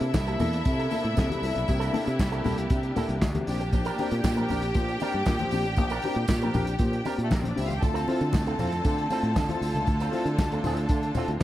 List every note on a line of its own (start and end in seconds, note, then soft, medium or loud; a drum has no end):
0.00 3.44 C3 medium
0.00 0.11 C3 loud
0.00 7.79 A#3 medium
0.00 7.79 D4 medium
0.00 3.17 E4 medium
0.00 3.44 E4 medium
0.00 0.07 E4 soft
0.00 1.66 A4 medium
0.00 0.07 A4 soft
0.00 3.17 E5 loud
0.00 muted clean electric guitar stroke soft
0.00 closed hi-hat soft
0.00 tambourine soft
0.14 0.35 C2 loud
0.14 0.20 E4 soft
0.14 0.20 A4 soft
0.14 muted clean electric guitar stroke soft
0.14 kick loud
0.14 snare loud
0.14 clap medium
0.14 tambourine medium
0.14 high conga medium
0.27 0.40 C3 medium
0.27 0.41 G3 medium
0.27 0.39 A#3 medium
0.27 0.39 E4 medium
0.27 0.40 A4 medium
0.27 closed hi-hat soft
0.27 tambourine soft
0.39 0.61 E2 medium
0.39 0.53 A#3 medium
0.39 0.60 A#3 medium
0.39 0.53 D4 medium
0.39 0.53 E4 medium
0.39 0.53 A4 medium
0.39 0.52 A4 medium
0.39 open hi-hat soft
0.39 tambourine medium
0.39 muted conga soft
0.39 low conga medium
0.52 muted clean electric guitar stroke soft
0.52 closed hi-hat medium
0.52 tambourine soft
0.65 0.86 C3 medium
0.65 0.79 C3 medium
0.65 0.79 G3 medium
0.65 muted clean electric guitar stroke soft
0.65 kick loud
0.65 closed hi-hat medium
0.65 tambourine soft
0.79 0.89 A#3 medium
0.79 0.90 E4 medium
0.79 0.91 A4 medium
0.79 closed hi-hat soft
0.90 1.07 A#3 medium
0.90 1.04 A#3 medium
0.90 1.04 D4 medium
0.90 1.04 E4 medium
0.90 1.02 E4 medium
0.90 1.02 A4 medium
0.90 1.03 A4 medium
0.90 open hi-hat medium
0.90 tambourine medium
0.90 muted conga soft
1.04 1.14 A2 medium
1.04 1.09 E4 soft
1.04 1.09 A4 soft
1.04 muted clean electric guitar stroke soft
1.04 closed hi-hat medium
1.16 1.28 C3 medium
1.16 1.30 E4 medium
1.16 1.30 A4 medium
1.16 muted clean electric guitar stroke soft
1.16 kick loud
1.16 snare loud
1.16 clap medium
1.16 tambourine medium
1.16 high conga medium
1.29 1.43 C3 medium
1.29 1.43 G3 medium
1.29 muted clean electric guitar stroke soft
1.29 closed hi-hat medium
1.29 high conga medium
1.42 1.53 C2 medium
1.42 1.55 E4 medium
1.42 1.56 A4 medium
1.42 open hi-hat medium
1.42 tambourine medium
1.54 1.66 B1 medium
1.54 muted clean electric guitar stroke soft
1.54 closed hi-hat soft
1.54 tambourine soft
1.67 1.89 C2 loud
1.67 1.81 C3 medium
1.67 1.81 G3 medium
1.67 3.46 G4 medium
1.67 muted clean electric guitar stroke soft
1.67 kick medium
1.67 closed hi-hat medium
1.67 tambourine medium
1.80 1.91 A#3 medium
1.80 1.92 E4 medium
1.80 1.93 A4 medium
1.80 closed hi-hat soft
1.80 tambourine soft
1.93 2.09 A#3 medium
1.93 2.06 A#3 medium
1.93 2.07 D4 medium
1.93 2.05 E4 medium
1.93 2.06 E4 medium
1.93 2.04 A4 medium
1.93 2.05 A4 medium
1.93 open hi-hat medium
1.93 muted conga medium
2.05 2.17 C3 medium
2.05 2.12 E4 soft
2.05 2.12 A4 soft
2.05 muted clean electric guitar stroke soft
2.05 closed hi-hat soft
2.05 tambourine soft
2.19 2.40 C2 medium
2.19 2.25 E4 soft
2.19 2.24 A4 soft
2.19 muted clean electric guitar stroke soft
2.19 kick loud
2.19 snare loud
2.19 clap medium
2.19 tambourine medium
2.19 high conga medium
2.32 2.45 C3 medium
2.32 2.45 G3 medium
2.32 2.43 A#3 medium
2.32 2.44 E4 medium
2.32 2.45 A4 medium
2.32 closed hi-hat soft
2.32 tambourine soft
2.44 2.66 C2 medium
2.44 2.65 A#3 medium
2.44 2.58 A#3 medium
2.44 2.58 D4 medium
2.44 2.57 E4 medium
2.44 2.58 E4 medium
2.44 2.58 A4 medium
2.44 2.57 A4 medium
2.44 open hi-hat medium
2.44 tambourine medium
2.44 muted conga soft
2.44 low conga medium
2.58 muted clean electric guitar stroke soft
2.58 closed hi-hat medium
2.70 2.91 C3 loud
2.70 2.84 C3 medium
2.70 2.84 G3 medium
2.70 muted clean electric guitar stroke soft
2.70 kick loud
2.70 closed hi-hat medium
2.70 tambourine medium
2.83 muted clean electric guitar stroke soft
2.83 closed hi-hat soft
2.96 3.09 A#3 medium
2.96 3.16 A#3 medium
2.96 3.09 D4 medium
2.96 3.08 E4 medium
2.96 3.08 A4 medium
2.96 3.07 A4 loud
2.96 open hi-hat medium
2.96 tambourine medium
2.96 muted conga soft
2.96 low conga medium
3.08 3.22 C2 medium
3.08 3.14 E4 soft
3.08 3.14 A4 soft
3.08 muted clean electric guitar stroke soft
3.08 closed hi-hat soft
3.22 3.42 D2 medium
3.22 3.27 E4 soft
3.22 3.27 A4 soft
3.22 muted clean electric guitar stroke soft
3.22 kick loud
3.22 snare loud
3.22 clap medium
3.22 tambourine medium
3.22 high conga medium
3.34 3.47 C3 medium
3.34 3.47 G3 medium
3.34 muted clean electric guitar stroke soft
3.34 closed hi-hat medium
3.34 high conga medium
3.47 3.89 A#1 medium
3.47 3.60 C4 medium
3.47 3.60 D4 medium
3.47 7.14 G4 loud
3.47 3.60 G4 medium
3.47 7.79 G4 medium
3.47 7.14 G5 loud
3.47 open hi-hat medium
3.47 tambourine medium
3.60 muted clean electric guitar stroke medium
3.60 closed hi-hat soft
3.60 tambourine soft
3.73 3.86 A#2 medium
3.73 3.86 F3 medium
3.73 muted clean electric guitar stroke soft
3.73 kick medium
3.73 closed hi-hat soft
3.73 tambourine medium
3.85 3.98 D4 medium
3.85 3.98 G4 medium
3.85 3.99 A#4 medium
3.85 closed hi-hat soft
3.85 tambourine soft
3.98 4.12 C4 medium
3.98 4.15 D4 medium
3.98 4.10 D4 medium
3.98 4.10 G4 loud
3.98 4.11 G4 medium
3.98 4.11 A#4 medium
3.98 open hi-hat medium
3.98 muted conga medium
4.11 4.22 A#2 medium
4.11 4.16 D4 soft
4.11 4.16 G4 soft
4.11 muted clean electric guitar stroke soft
4.11 closed hi-hat soft
4.11 tambourine soft
4.24 4.45 A#2 medium
4.24 4.29 D4 soft
4.24 4.29 G4 soft
4.24 muted clean electric guitar stroke soft
4.24 kick medium
4.24 snare loud
4.24 clap medium
4.24 tambourine loud
4.24 high conga medium
4.36 4.50 A#2 medium
4.36 4.50 F3 medium
4.36 4.48 D4 medium
4.36 4.49 G4 medium
4.36 4.49 A#4 medium
4.36 closed hi-hat soft
4.36 tambourine soft
4.49 4.71 A#1 medium
4.49 4.63 C4 medium
4.49 4.70 D4 medium
4.49 4.63 D4 medium
4.49 4.63 G4 medium
4.49 4.62 A#4 medium
4.49 open hi-hat soft
4.49 tambourine medium
4.49 muted conga soft
4.49 low conga medium
4.62 muted clean electric guitar stroke soft
4.62 closed hi-hat medium
4.62 tambourine soft
4.74 4.96 A#2 loud
4.74 4.88 A#2 medium
4.74 4.89 F3 medium
4.74 muted clean electric guitar stroke soft
4.74 kick loud
4.74 closed hi-hat medium
4.74 tambourine medium
4.88 muted clean electric guitar stroke soft
4.88 closed hi-hat soft
5.00 5.14 C4 medium
5.00 5.13 D4 medium
5.00 5.22 D4 loud
5.00 5.13 G4 medium
5.00 5.15 G4 medium
5.00 5.14 A#4 medium
5.00 open hi-hat medium
5.00 tambourine medium
5.00 muted conga medium
5.13 5.24 G2 medium
5.13 5.19 D4 soft
5.13 5.19 G4 soft
5.13 muted clean electric guitar stroke soft
5.13 closed hi-hat soft
5.26 5.37 A#2 medium
5.26 5.32 D4 soft
5.26 5.32 G4 soft
5.26 muted clean electric guitar stroke soft
5.26 kick loud
5.26 snare loud
5.26 clap medium
5.26 tambourine medium
5.26 high conga medium
5.39 5.53 A#2 medium
5.39 5.53 F3 medium
5.39 muted clean electric guitar stroke soft
5.39 closed hi-hat soft
5.39 high conga medium
5.51 5.65 A#1 medium
5.51 5.65 C4 medium
5.51 5.65 D4 medium
5.51 5.65 G4 medium
5.51 open hi-hat medium
5.51 tambourine medium
5.65 5.78 A1 medium
5.65 muted clean electric guitar stroke soft
5.65 closed hi-hat soft
5.65 tambourine soft
5.76 5.98 A#1 loud
5.76 5.91 A#2 medium
5.76 5.91 F3 medium
5.76 muted clean electric guitar stroke soft
5.76 kick loud
5.76 closed hi-hat medium
5.76 tambourine medium
5.90 6.03 D4 medium
5.90 6.03 G4 medium
5.90 6.04 A#4 medium
5.90 closed hi-hat soft
5.90 tambourine medium
6.02 6.17 C4 medium
6.02 6.20 D4 medium
6.02 6.16 D4 medium
6.02 6.17 G4 medium
6.02 6.16 G4 loud
6.02 6.16 A#4 medium
6.02 open hi-hat medium
6.02 muted conga soft
6.15 6.26 A#2 medium
6.15 6.21 D4 soft
6.15 6.22 G4 soft
6.15 muted clean electric guitar stroke soft
6.15 closed hi-hat soft
6.28 6.49 A#2 loud
6.28 6.34 D4 soft
6.28 6.34 G4 soft
6.28 muted clean electric guitar stroke soft
6.28 kick loud
6.28 snare loud
6.28 clap medium
6.28 tambourine loud
6.28 high conga medium
6.41 6.55 A#2 medium
6.41 6.55 F3 medium
6.41 6.53 D4 soft
6.41 6.54 G4 medium
6.41 6.54 A#4 medium
6.41 closed hi-hat soft
6.41 tambourine soft
6.54 6.75 A#1 medium
6.54 6.68 C4 medium
6.54 6.75 D4 medium
6.54 6.68 D4 medium
6.54 6.67 G4 medium
6.54 6.68 G4 medium
6.54 6.66 A#4 medium
6.54 open hi-hat soft
6.54 tambourine medium
6.54 muted conga soft
6.54 low conga medium
6.67 muted clean electric guitar stroke soft
6.67 closed hi-hat medium
6.67 tambourine soft
6.79 7.00 A#2 loud
6.79 6.93 A#2 medium
6.79 6.93 F3 medium
6.79 muted clean electric guitar stroke soft
6.79 kick loud
6.79 closed hi-hat medium
6.79 tambourine medium
6.92 muted clean electric guitar stroke soft
6.92 closed hi-hat soft
7.05 7.19 C4 medium
7.05 7.26 D4 medium
7.05 7.17 D4 medium
7.05 7.18 G4 medium
7.05 7.17 A#4 medium
7.05 open hi-hat medium
7.05 tambourine medium
7.05 muted conga soft
7.18 7.29 A#2 medium
7.18 7.23 D4 soft
7.18 7.24 G4 soft
7.18 muted clean electric guitar stroke soft
7.18 closed hi-hat soft
7.23 7.31 A3 medium
7.23 7.32 A4 medium
7.31 7.52 A#1 medium
7.31 7.40 A#3 medium
7.31 7.36 D4 soft
7.31 7.36 G4 soft
7.31 7.40 A#4 medium
7.31 muted clean electric guitar stroke soft
7.31 kick loud
7.31 snare loud
7.31 clap medium
7.31 tambourine medium
7.31 high conga medium
7.41 7.57 A#2 medium
7.41 7.57 F3 soft
7.41 7.49 C4 medium
7.41 7.49 C5 medium
7.41 muted clean electric guitar stroke soft
7.41 high conga medium
7.45 7.57 D4 medium
7.45 7.57 D5 medium
7.45 closed hi-hat medium
7.55 7.78 C#2 medium
7.55 7.69 C4 medium
7.55 7.69 D4 medium
7.55 7.66 E4 medium
7.55 7.70 G4 medium
7.55 7.66 E5 medium
7.55 open hi-hat medium
7.55 tambourine medium
7.66 7.74 F4 medium
7.66 7.74 F5 medium
7.66 muted clean electric guitar stroke medium
7.66 high conga medium
7.70 7.82 G4 medium
7.70 7.82 G5 medium
7.70 closed hi-hat soft
7.70 tambourine soft
7.81 8.03 D2 loud
7.81 7.95 D3 medium
7.81 11.43 D3 medium
7.81 7.95 A3 medium
7.81 11.43 A3 medium
7.81 9.86 C4 medium
7.81 11.43 F4 medium
7.81 11.31 A4 medium
7.81 11.31 A5 medium
7.81 muted clean electric guitar stroke soft
7.81 kick loud
7.81 closed hi-hat medium
7.81 tambourine medium
7.94 8.06 C4 medium
7.94 8.07 F4 medium
7.94 8.08 A4 medium
7.94 closed hi-hat soft
7.94 tambourine soft
8.07 8.24 C4 medium
8.07 8.21 C4 loud
8.07 8.20 E4 medium
8.07 8.21 F4 medium
8.07 8.20 F4 loud
8.07 8.20 A4 medium
8.07 open hi-hat medium
8.07 muted conga medium
8.21 8.31 D3 medium
8.21 8.26 E4 soft
8.21 8.26 F4 soft
8.21 muted clean electric guitar stroke soft
8.21 closed hi-hat soft
8.21 tambourine soft
8.33 8.54 D2 medium
8.33 8.38 E4 soft
8.33 8.38 F4 soft
8.33 muted clean electric guitar stroke soft
8.33 kick loud
8.33 snare loud
8.33 clap medium
8.33 tambourine medium
8.33 high conga medium
8.46 8.59 D3 medium
8.46 8.59 A3 medium
8.46 8.58 C4 medium
8.46 8.59 F4 medium
8.46 8.59 A4 medium
8.46 closed hi-hat soft
8.46 tambourine soft
8.59 8.80 F2 medium
8.59 8.72 C4 medium
8.59 8.80 C4 medium
8.59 8.72 E4 medium
8.59 8.72 F4 medium
8.59 8.73 F4 medium
8.59 8.72 A4 medium
8.59 open hi-hat medium
8.59 tambourine medium
8.59 low conga medium
8.72 muted clean electric guitar stroke soft
8.72 closed hi-hat medium
8.72 tambourine soft
8.85 8.98 D3 medium
8.85 9.06 D3 loud
8.85 8.98 A3 medium
8.85 muted clean electric guitar stroke soft
8.85 kick loud
8.85 closed hi-hat medium
8.85 tambourine medium
8.98 muted clean electric guitar stroke soft
8.98 closed hi-hat soft
9.10 9.23 C4 medium
9.10 9.31 C4 medium
9.10 9.22 E4 medium
9.10 9.22 F4 medium
9.10 9.24 F4 medium
9.10 9.23 A4 medium
9.10 open hi-hat medium
9.10 tambourine medium
9.10 muted conga soft
9.23 9.33 A2 medium
9.23 9.28 E4 soft
9.23 9.28 F4 soft
9.23 muted clean electric guitar stroke soft
9.23 closed hi-hat soft
9.36 9.46 D3 medium
9.36 muted clean electric guitar stroke soft
9.36 kick loud
9.36 snare loud
9.36 clap medium
9.36 tambourine medium
9.36 high conga medium
9.49 9.62 C4 medium
9.49 9.62 E4 medium
9.49 9.62 F4 medium
9.49 muted clean electric guitar stroke soft
9.49 closed hi-hat medium
9.49 high conga medium
9.61 9.72 D2 medium
9.61 open hi-hat medium
9.61 tambourine medium
9.74 9.84 C#2 medium
9.74 9.85 D3 medium
9.74 9.86 A3 medium
9.74 muted clean electric guitar stroke soft
9.74 closed hi-hat soft
9.87 10.08 D2 loud
9.87 10.00 D3 medium
9.87 10.00 A3 medium
9.87 11.43 D4 medium
9.87 muted clean electric guitar stroke soft
9.87 kick loud
9.87 closed hi-hat medium
9.87 tambourine medium
10.00 10.13 C4 medium
10.00 10.13 F4 medium
10.00 10.14 A4 medium
10.00 closed hi-hat soft
10.00 tambourine medium
10.12 10.25 C4 loud
10.12 10.30 C4 medium
10.12 10.24 E4 medium
10.12 10.24 F4 loud
10.12 10.27 F4 medium
10.12 10.26 A4 medium
10.12 open hi-hat medium
10.12 muted conga soft
10.25 10.36 D3 medium
10.25 10.30 E4 soft
10.25 10.30 F4 soft
10.25 muted clean electric guitar stroke soft
10.25 closed hi-hat soft
10.25 tambourine soft
10.38 10.59 D2 medium
10.38 muted clean electric guitar stroke soft
10.38 kick loud
10.38 snare loud
10.38 clap medium
10.38 tambourine loud
10.38 high conga medium
10.50 10.64 D3 medium
10.50 10.64 A3 medium
10.50 10.64 C4 soft
10.50 10.65 F4 medium
10.50 10.65 A4 medium
10.50 closed hi-hat soft
10.50 tambourine soft
10.63 10.85 D2 medium
10.63 10.77 C4 medium
10.63 10.85 C4 medium
10.63 10.77 E4 medium
10.63 10.77 F4 medium
10.63 10.78 F4 loud
10.63 10.77 A4 loud
10.63 open hi-hat medium
10.63 tambourine medium
10.63 muted conga soft
10.63 low conga medium
10.76 muted clean electric guitar stroke soft
10.76 closed hi-hat medium
10.76 tambourine soft
10.89 11.02 D3 medium
10.89 11.10 D3 loud
10.89 11.02 A3 medium
10.89 muted clean electric guitar stroke soft
10.89 kick loud
10.89 closed hi-hat medium
10.89 tambourine soft
11.03 muted clean electric guitar stroke soft
11.03 closed hi-hat soft
11.14 11.27 C4 medium
11.14 11.36 C4 medium
11.14 11.26 E4 medium
11.14 11.27 F4 medium
11.14 11.30 F4 medium
11.14 open hi-hat medium
11.14 tambourine medium
11.14 muted conga soft
11.14 low conga medium
11.18 11.29 A4 medium
11.28 11.38 D2 medium
11.28 11.33 E4 soft
11.28 11.33 F4 soft
11.28 muted clean electric guitar stroke soft
11.28 closed hi-hat medium
11.40 11.43 C4 medium